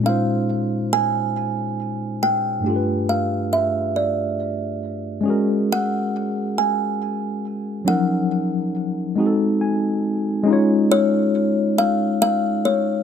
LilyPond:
<<
  \new Staff \with { instrumentName = "Kalimba" } { \time 6/8 \key des \major \tempo 4. = 46 f''4 aes''4. g''8~ | g''8 f''8 fes''8 d''4 r8 | r8 ges''4 aes''4. | ges''2~ ges''8 r8 |
r8 des''4 f''8 f''8 des''8 | }
  \new Staff \with { instrumentName = "Tine electric piano" } { \time 6/8 \key des \major << { r2. | r2. | r2. | r2 aes''4 |
r2. | } \\ { <bes, aes des' ees' f' c''>2. | <g, a d' f' g' a' b'>2. | <aes des' ges' aes' bes'>2. | <f ges des' ees' bes'>4. <aes c' ees' ges' aes' a'>4. |
<aes des' ees' f' des''>2. | } >> }
>>